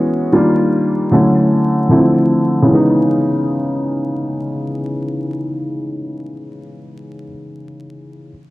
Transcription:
Already playing: E3 G#3 B3 C#4 F#4
0.32 D#3 G3 A#3 D4 F4
1.11 D3 F#3 A3 C#4 E4
1.89 D3 E3 A3 C4 E4
1.96 F3
2.62 C#3 E3
2.68 G#3 B3
2.75 D#4

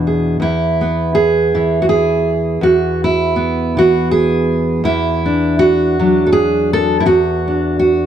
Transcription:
Already playing: E2 B2 E3 D4
0.07 G#4
0.40 E2 E4
0.81 B3
1.15 G#4
1.55 E3 E4
1.82 F#4
1.89 G#4
2.61 E2 F#4
3.04 E4
3.36 B3
3.77 E3 F#4
4.11 G#4
4.84 E2 E4
5.26 D4
5.59 F#4
5.99 F#3 D4
6.27 A4
6.33 G#4
6.73 A4
7.00 E4
7.06 E2 F#4
7.48 D4
7.79 F#4

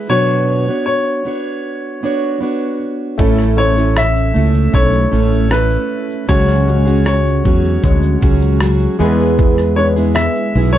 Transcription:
Already playing: B3 E4 G#4 B4
0.09 B2 F#3 B3 D4 F#4 C#5
0.67 B3 D4 F#4 C#5
0.86 C#5
1.25 B3 D4 F#4 C#5
2.03 B3 D4 F#4 C#5
2.41 B3 D4 F#4 C#5
3.18 A1 A2 A3 C#4 E4 A4 C#5, kick, shaker
3.38 cross-stick, shaker
3.57 A3 C#4 E4 C5 C#5, shaker
3.65 C#5
3.76 C#4 E4 A4, shaker
3.97 E5, cross-stick, shaker
4.16 shaker
4.34 C#2 A3 C#4 E4 A4
4.54 shaker
4.73 B1 A3 C#4 E4 A4 C#5, kick, shaker
4.93 shaker
5.11 A1 A3 C#4 E4 A4, shaker
5.32 shaker
5.49 A3 C#4 E4 A4 B4, cross-stick, shaker
5.71 shaker
6.10 shaker
6.28 C#2 C#3 F#3 G#3 C#4 F#4 G#4 C#5, kick, shaker
6.48 cross-stick, shaker
6.67 G#3 C#4 F#4 C#5, shaker
6.85 C#4 F#4 G#4, shaker
7.06 C#5, cross-stick, shaker
7.26 shaker
7.45 E2 F#3 C#4 F#4 G#4, kick
7.64 shaker
7.83 D2 G#3 C#4 F#4 C#5, kick, shaker
8.02 shaker
8.21 C#2 F#3 C#4 F#4 G#4, kick, shaker
8.42 shaker
8.61 F#3 C#4 F#4 G#4, cross-stick, shaker
8.80 shaker
8.99 E2 E3 G#3 B3 E4 G#4 B4
9.19 shaker
9.39 kick, shaker
9.58 cross-stick, shaker
9.76 G#3 B3 D4 E4 C#5, shaker
9.96 G#3 B3 E4 G#4, shaker
10.15 E5, cross-stick, shaker
10.35 shaker
10.55 B1 G#3 B3 E4 G#4
10.73 C#5, shaker

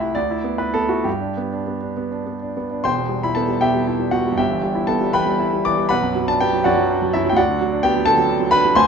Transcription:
Already playing: C2 A3 G4 E5 F#5
0.00 E4
0.15 D2 D5
0.31 E4
0.44 B3
0.58 E4 B4
0.74 B3 A4
0.89 E4 F#4
1.04 G2 G4
1.21 D4
1.37 B3
1.53 D4
1.67 B3
1.83 D4
1.97 B3
2.12 D4
2.27 B3
2.42 D4
2.57 B3
2.71 D4
2.84 E1 E2 C5 G5 C6
2.98 B2
3.09 G3
3.23 E4 B5
3.35 B3 A4 A5
3.48 G3
3.61 B2 G4 E5 G5
3.74 G3
3.87 E4
4.00 G3
4.11 B2 F#4 F#5
4.26 G3
4.32 G2
4.37 G1 G4 E5 G5
4.51 E3
4.63 G3
4.75 E4
4.87 B3 A4 A5
5.01 G3
5.13 E3 B4 G5 B5
5.26 G3
5.40 E4
5.53 G3
5.65 E3 D5 D6
5.78 G3
5.89 B1 B4 F#5 B5
6.03 F#2
6.15 F#3
6.28 D4 A5
6.41 B3 G4 G5
6.53 F#3
6.64 F#2 F#4 D5 F#5
6.77 F#3
6.90 D4
7.02 F#3
7.13 F#2 E4 E5
7.25 F#3
7.29 D2 G5
7.36 F#4 D5 F#5
7.49 D3
7.61 F#3
7.73 D4
7.83 B3 G4 G5
7.96 F#3
8.05 D3 A4 A5
8.18 F#3
8.29 D4
8.40 F#3
8.51 D3 B4 B5
8.65 F#3
8.75 D2 C5 G#5 C6

